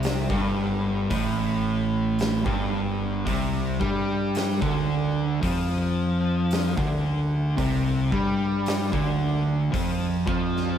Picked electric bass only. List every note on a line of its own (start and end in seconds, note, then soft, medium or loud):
0.00 0.26 C2 loud
0.30 1.07 G1 loud
1.11 2.42 A1 loud
2.46 3.23 G1 loud
3.27 3.77 C2 loud
3.81 4.58 G2 loud
4.62 5.39 D2 loud
5.43 6.74 F2 loud
6.78 7.54 D2 loud
7.58 8.08 C2 loud
8.13 8.89 G2 loud
8.93 9.70 D2 medium
9.74 10.24 F2 loud
10.28 10.78 F2 medium